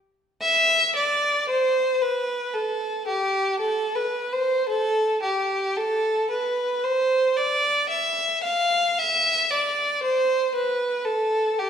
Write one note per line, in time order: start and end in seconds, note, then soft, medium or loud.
0.42 0.92 E5 medium
0.96 1.49 D5 medium
1.49 2.01 C5 medium
2.02 2.54 B4 medium
2.54 3.07 A4 medium
3.08 3.59 G4 medium
3.60 3.95 A4 medium
3.95 4.32 B4 medium
4.33 4.68 C5 medium
4.69 5.22 A4 medium
5.22 5.76 G4 medium
5.77 6.30 A4 medium
6.30 6.82 B4 medium
6.84 7.37 C5 medium
7.37 7.90 D5 medium
7.89 8.42 E5 medium
8.44 8.96 F5 medium
8.99 9.51 E5 medium
9.51 10.03 D5 medium
10.03 10.54 C5 medium
10.55 11.06 B4 medium
11.05 11.58 A4 medium
11.59 11.70 G4 medium